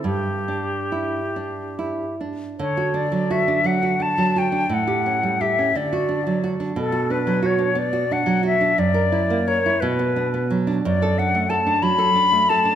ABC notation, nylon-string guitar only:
X:1
M:6/8
L:1/16
Q:3/8=59
K:Clyd
V:1 name="Nylon-string guitar"
G,,2 D2 E2 D2 E2 D2 | [K:D] D, F D F, F D F, F D F, F D | A,, G C G, G C D, F D F, F D | B,, F D F, F D B, F D F, F D |
F,, ^A E ^A, A E B,, B, D B, F, D | [K:Dmix] F,, A D A, A D F, A D A, A D |]